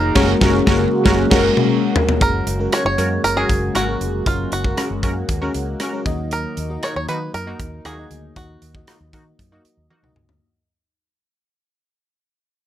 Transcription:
Already playing: overdriven electric guitar D#3 A#3 D#4, analog synth pad F#3 D#4, clean electric guitar A#3, fm electric piano D#4 F4 F#4 G#4 A#5, five-string banjo A#4
0.15 fingered electric bass F#1, analog synth pad C#3 F#3 G#3 A#3 F#4, overdriven electric guitar F#3 C#4 F#4, fm electric piano G#3 A#3 C#4 F#4 A#4, analog polysynth C#4 F#4 A#4, kick, snare, crash
0.40 fingered electric bass F#1, overdriven electric guitar F#3 C#4 F#4, fm electric piano G#3 A#3 C#4 F#4 A#4, analog polysynth C#4 F#4 A#4, kick, snare
0.66 fingered electric bass F#1, overdriven electric guitar F#3 C#4 F#4, fm electric piano G#3 A#3 C#4 F#4 A#4, analog polysynth C#4 F#4 A#4, kick, snare
1.04 fingered electric bass F#1, overdriven electric guitar F#3 C#4 F#4, fm electric piano G#3 A#3 C#4 F#4 A#4, analog polysynth C#4 F#4 A#4, kick, snare
1.30 fingered electric bass F#1, overdriven electric guitar F#3 C#4 F#4, fm electric piano G#3 A#3 C#4 F#4 A#4, analog polysynth C#4 F#4 A#4, kick, snare, crash
1.57 mid tom
1.96 floor tom
2.09 floor tom
2.21 fingered electric bass F#1, analog synth pad C#3 F#3 G#3 A#3 F#4, fm electric piano G#3 C#4 F#4 A#4, five-string banjo A#4, kick, closed hi-hat
2.47 fingered electric bass F#1, closed hi-hat
2.59 fm electric piano G#3 C#4 F#4 A#4
2.72 analog polysynth C#4 F#4 A#4, five-string banjo C#5, cross-stick, closed hi-hat
2.85 fingered electric bass F#1, five-string banjo C#5
2.98 fingered electric bass F#2, fm electric piano G#3 C#4 F#4 A#4, analog polysynth C#4 F#4 A#4, closed hi-hat
3.24 fingered electric bass F#1, five-string banjo A#4, closed hi-hat
3.36 fm electric piano G#3 C#4 F#4 A#4, analog polysynth C#4 F#4 A#4, five-string banjo G#4
3.49 fingered electric bass F#1, kick, closed hi-hat
3.75 fingered electric bass G#1, analog polysynth C#4 F#4 A#4, five-string banjo F#4, cross-stick, closed hi-hat
3.88 fm electric piano G#3 C#4 F#4 A#4
4.01 fingered electric bass F1, closed hi-hat
4.26 fingered electric bass F#1, fm electric piano G#3 C#4 F#4 A#4, five-string banjo F4, kick, closed hi-hat
4.52 fingered electric bass F#1, five-string banjo F#4, closed hi-hat
4.64 fm electric piano G#3 C#4 F#4 A#4, kick
4.77 analog polysynth C#4 F#4 A#4, cross-stick, closed hi-hat
4.90 fingered electric bass F#1
5.03 fingered electric bass F#2, fm electric piano G#3 C#4 F#4 A#4, analog polysynth C#4 F#4 A#4, kick, closed hi-hat
5.29 fingered electric bass D#2, kick, closed hi-hat
5.42 fm electric piano G#3 C#4 F#4 A#4, analog polysynth C#4 F#4 A#4
5.54 fingered electric bass C#2, closed hi-hat
5.80 analog polysynth C#4 F#4 A#4, cross-stick, closed hi-hat
5.93 fm electric piano G#3 C#4 F#4 A#4
6.05 fingered electric bass D#2, fm electric piano D#3 A#3 D#4 F#4 D#5, analog synth pad D#4, kick, closed hi-hat
6.31 five-string banjo A#4, closed hi-hat
6.57 fingered electric bass D#2, closed hi-hat
6.69 fm electric piano A#3 D#4 F#4 D#5
6.83 analog polysynth D#4 F#4 A#4, five-string banjo C#5, cross-stick, closed hi-hat
6.96 fingered electric bass D#2, five-string banjo C#5
7.08 fingered electric bass D#3, fm electric piano A#3 D#4 F#4 D#5, analog polysynth A#3 D#4 F#4, five-string banjo B4, closed hi-hat
7.34 fingered electric bass F#2, five-string banjo A#4, closed hi-hat
7.46 fm electric piano A#3 D#4 F#4 D#5, analog polysynth A#3 D#4 F#4
7.60 fingered electric bass D#2, kick, closed hi-hat
7.85 fingered electric bass D#2, analog polysynth A#3 D#4 F#4, five-string banjo G#4, cross-stick, closed hi-hat
7.98 fm electric piano A#3 D#4 F#4 D#5
8.10 fingered electric bass D2, fm electric piano D#3, closed hi-hat
8.36 fingered electric bass D#2, fm electric piano A#3 D#4 F#4 D#5, five-string banjo F#4, kick, closed hi-hat
8.62 fingered electric bass D#2, closed hi-hat
8.75 fm electric piano A#3 D#4 F#4 D#5, kick
8.87 analog polysynth A#3 D#4 F#4, cross-stick, closed hi-hat
9.00 fingered electric bass D#2
9.13 fingered electric bass D#3, fm electric piano A#3 D#4 F#4 D#5, analog polysynth A#3 D#4 F#4, kick, closed hi-hat
9.39 fingered electric bass F#2, kick, closed hi-hat
9.51 fm electric piano A#3 D#4 F#4 D#5, analog polysynth A#3 D#4 F#4
9.64 muted fingered electric bass stroke, closed hi-hat
9.77 fingered electric bass D#2
9.90 analog polysynth A#3 D#4 F#4, high tom
10.03 fingered electric bass C#2, fm electric piano A#3 D#4 F#4 D#5, mid tom
10.16 fingered electric bass C#2, mid tom
10.29 fingered electric bass D2, floor tom

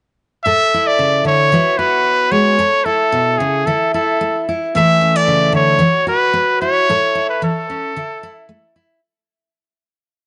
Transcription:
0.44 steel-string acoustic guitar A2 A4, trumpet E5
0.74 steel-string acoustic guitar E4
0.87 trumpet D5
0.99 steel-string acoustic guitar C#3
1.25 steel-string acoustic guitar D3, trumpet C#5
1.52 steel-string acoustic guitar E3 B3 E4 F#4
1.78 steel-string acoustic guitar F#4, trumpet B4
2.31 steel-string acoustic guitar G#3, trumpet C#5
2.59 steel-string acoustic guitar A4, muted steel-string acoustic guitar stroke
2.85 steel-string acoustic guitar E4, trumpet A4
3.12 steel-string acoustic guitar B2
3.38 steel-string acoustic guitar C#3, trumpet G#4
3.66 steel-string acoustic guitar D3 E4, trumpet A4
3.94 steel-string acoustic guitar E4, trumpet A4
4.21 steel-string acoustic guitar A3
4.49 steel-string acoustic guitar E4
4.75 steel-string acoustic guitar A2 E3 A3 E4 A4, trumpet E5
5.01 steel-string acoustic guitar C#4
5.16 steel-string acoustic guitar E4, trumpet D5
5.28 steel-string acoustic guitar C#3
5.53 steel-string acoustic guitar D3, trumpet C#5
5.79 steel-string acoustic guitar E3 F#4
6.07 steel-string acoustic guitar F#4, trumpet B4
6.34 steel-string acoustic guitar B3
6.61 steel-string acoustic guitar E4, trumpet C#5
6.90 steel-string acoustic guitar A2 A4
7.15 steel-string acoustic guitar E4
7.29 trumpet B4
7.42 steel-string acoustic guitar E3, trumpet A4
7.70 steel-string acoustic guitar C#4
7.96 steel-string acoustic guitar D3 E4
8.23 steel-string acoustic guitar E4
8.49 steel-string acoustic guitar A3
8.76 steel-string acoustic guitar E4

